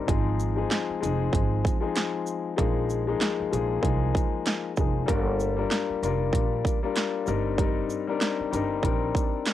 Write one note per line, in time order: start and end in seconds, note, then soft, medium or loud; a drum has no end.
0.07 0.63 G#1 loud
0.07 0.53 F3 loud
0.07 0.53 G#3 medium
0.07 0.53 C4 medium
0.07 0.54 D#4 medium
0.07 0.54 G#4 loud
0.07 kick loud
0.07 closed hi-hat loud
0.40 shaker medium
0.56 0.98 F3 medium
0.56 0.98 G#3 medium
0.56 0.98 C4 medium
0.56 0.98 D#4 medium
0.56 0.99 G#4 loud
0.71 snare loud
0.71 clap medium
0.71 closed hi-hat medium
0.90 muted upright bass stroke soft
1.00 1.29 F1 medium
1.00 1.75 F3 loud
1.00 1.75 G#3 medium
1.00 1.75 C4 medium
1.00 1.75 D#4 medium
1.00 1.76 G#4 loud
1.00 closed hi-hat medium
1.00 shaker medium
1.33 1.60 G#1 loud
1.33 kick loud
1.33 closed hi-hat medium
1.65 kick loud
1.65 closed hi-hat medium
1.65 shaker medium
1.80 2.52 F3 medium
1.80 2.52 G#3 medium
1.80 2.52 C4 medium
1.80 2.52 D#4 medium
1.80 2.53 G#4 loud
1.96 snare loud
1.96 clap medium
1.96 closed hi-hat medium
2.27 shaker soft
2.56 3.13 A#1 loud
2.56 3.02 F3 loud
2.56 3.03 G#3 medium
2.56 3.03 A#3 medium
2.56 3.03 D#4 medium
2.56 3.04 G#4 loud
2.56 kick loud
2.56 closed hi-hat loud
2.90 shaker medium
3.07 3.48 F3 medium
3.07 3.48 G#3 medium
3.07 3.49 A#3 medium
3.07 3.49 D#4 loud
3.07 3.49 G#4 loud
3.21 snare loud
3.21 clap medium
3.21 closed hi-hat medium
3.40 muted upright bass stroke soft
3.51 3.79 A#1 medium
3.51 3.80 F3 loud
3.51 3.80 G#3 medium
3.51 3.81 A#3 medium
3.51 3.81 D#4 medium
3.51 3.82 G#4 loud
3.51 closed hi-hat medium
3.51 shaker medium
3.81 4.10 C2 medium
3.81 4.70 F3 loud
3.81 4.70 G#3 medium
3.81 4.70 A#3 medium
3.81 4.71 D#4 medium
3.81 4.71 G#4 loud
3.81 kick loud
3.81 closed hi-hat medium
4.15 kick loud
4.15 closed hi-hat medium
4.15 shaker medium
4.46 snare loud
4.46 clap medium
4.46 closed hi-hat medium
4.77 5.04 F1 medium
4.77 5.07 F3 medium
4.77 5.07 G#3 medium
4.77 5.05 A#3 medium
4.77 5.07 D#4 medium
4.77 5.08 G#4 medium
4.77 kick loud
4.77 shaker soft
5.06 5.63 G1 loud
5.06 5.52 G3 loud
5.06 5.53 A#3 medium
5.06 5.53 D4 medium
5.06 5.53 F4 medium
5.06 5.53 A#4 loud
5.06 kick loud
5.06 closed hi-hat loud
5.40 shaker medium
5.57 5.98 G3 loud
5.57 5.98 A#3 medium
5.57 5.99 D4 medium
5.57 5.99 F4 medium
5.57 5.99 A#4 medium
5.71 snare loud
5.71 clap loud
5.71 closed hi-hat medium
5.90 muted upright bass stroke soft
6.03 6.29 F1 medium
6.03 6.76 G3 medium
6.03 6.76 A#3 medium
6.03 6.76 D4 medium
6.03 6.77 F4 loud
6.03 6.77 A#4 loud
6.03 closed hi-hat medium
6.03 shaker medium
6.33 6.60 A#1 loud
6.33 kick loud
6.33 closed hi-hat medium
6.65 kick loud
6.65 closed hi-hat medium
6.65 shaker medium
6.83 7.24 G3 loud
6.83 7.27 A#3 medium
6.83 7.25 D4 medium
6.83 7.28 F4 medium
6.83 7.26 A#4 loud
6.96 snare loud
6.96 clap medium
6.96 closed hi-hat medium
7.25 7.82 G1 loud
7.25 7.55 G3 medium
7.25 7.55 C4 medium
7.25 7.56 D4 medium
7.25 7.56 D#4 medium
7.25 7.56 A#4 loud
7.25 shaker soft
7.58 8.03 G3 loud
7.58 8.03 C4 medium
7.58 8.04 D4 medium
7.58 8.04 D#4 medium
7.58 8.04 A#4 loud
7.58 kick loud
7.58 closed hi-hat loud
7.90 shaker medium
8.07 8.48 G3 loud
8.07 8.49 C4 medium
8.07 8.49 D4 medium
8.07 8.49 D#4 medium
8.07 8.50 A#4 loud
8.21 snare loud
8.21 clap loud
8.21 closed hi-hat medium
8.40 muted upright bass stroke soft
8.51 8.79 G1 medium
8.51 8.81 G3 loud
8.51 8.81 C4 loud
8.51 8.81 D4 medium
8.51 8.81 D#4 medium
8.51 8.82 A#4 loud
8.51 closed hi-hat medium
8.51 shaker medium
8.83 9.10 A#1 loud
8.83 9.53 G3 medium
8.83 9.53 C4 medium
8.83 9.53 D4 medium
8.83 9.53 D#4 medium
8.83 9.53 A#4 loud
8.83 kick loud
8.83 closed hi-hat medium
9.15 kick loud
9.15 closed hi-hat medium
9.15 shaker medium
9.46 snare loud
9.46 clap medium
9.46 closed hi-hat medium